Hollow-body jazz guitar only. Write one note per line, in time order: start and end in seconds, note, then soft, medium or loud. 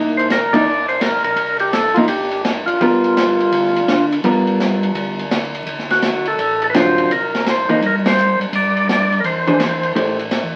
0.00 0.27 A#3 medium
0.00 0.28 D#4 medium
0.00 0.28 E4 medium
0.53 0.64 A#3 medium
0.53 0.65 D#4 medium
0.53 0.65 E4 medium
1.97 2.08 A#3 medium
1.97 2.08 D#4 medium
1.97 2.08 E4 medium
2.81 3.80 G3 medium
2.81 3.81 B3 medium
2.81 3.81 F4 medium
2.81 3.81 A#4 medium
4.24 5.23 G3 medium
4.24 5.24 B3 medium
4.24 5.24 F4 soft
4.24 5.24 A#4 medium
6.74 7.10 D3 medium
6.74 7.10 F#3 medium
6.74 7.10 C4 medium
6.74 7.10 F4 medium
7.69 7.80 E3 medium
7.69 7.80 A#3 medium
7.69 7.81 D#4 medium
9.47 9.59 E3 medium
9.47 9.59 D4 medium
9.47 9.59 G#4 medium
9.47 9.59 C5 medium
9.95 10.17 A3 soft
9.95 10.17 E4 soft
9.95 10.17 G4 soft
9.95 10.17 C5 soft